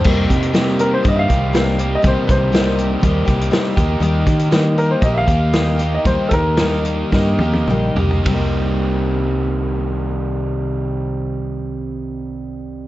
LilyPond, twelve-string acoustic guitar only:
\new Staff \with { instrumentName = "Twelve-string acoustic guitar" } { \time 4/4 \key c \minor \tempo 4 = 115 <c g bes ees' g'>8 <bes ees' g'>8 <c g bes ees' g'>4 <g bes ees' g'>8 <bes ees' g'>8 <c g bes ees' g'>8 <bes ees' g'>8 | <c g bes ees' g'>8 <bes ees' g'>8 <c g bes ees' g'>4 <g bes ees' g'>8 <bes ees' g'>8 <c g bes ees' g'>8 <bes ees' g'>8 | <ees g bes ees' g'>8 <bes ees' g'>8 <ees g bes ees' g'>4 <g bes ees' g'>8 <bes ees' g'>8 <ees g bes ees' g'>8 <bes ees' g'>8 | <ees g bes ees' g'>8 <ees' g'>8 <ees g bes ees' g'>4 <g bes ees' g'>8 <bes ees' g'>8 <ees g bes ees' g'>8 <bes ees' g'>8 |
<c g bes ees' g'>1~ | <c g bes ees' g'>1 | }